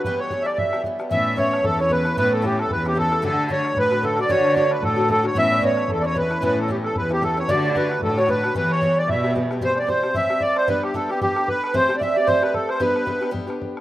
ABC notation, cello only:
X:1
M:4/4
L:1/8
Q:"Swing" 1/4=226
K:Amix
V:1 name="Cello" clef=bass
z8 | A,,4 E,,4 | A,,4 E,,4 | D,4 A,,4 |
D,4 A,,4 | A,,4 E,,4 | A,,4 E,,4 | D,4 A,,4 |
E,4 B,,4 | [K:Am] z8 | z8 | z8 |
z8 |]